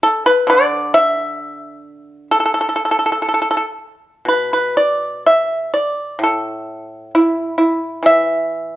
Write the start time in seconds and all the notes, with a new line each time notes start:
0.03 A4
0.26 B4
0.47 D3 D5
0.94 E5
2.31 A4
2.40 A4
2.46 A4
2.54 A4
2.61 A4
2.69 A4
2.76 A4
2.85 A4
2.91 A4
2.99 A4
3.06 A4
3.12 A4
3.22 A4
3.29 A4
3.34 A4
3.42 A4
3.51 A4
3.57 A4
4.25 B2 B4
4.53 B4
4.77 D5
5.26 E5
5.74 D5
6.19 A2
6.23 A4
7.15 E4
7.58 E4
8.03 E3 E5